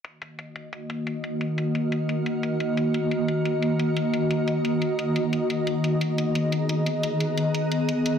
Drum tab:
HH |xxxxxxxx|xxxxxxxx|xxxxxxxx|xxxxxxxx|

HH |xxxxxxxx|xxxxxxxx|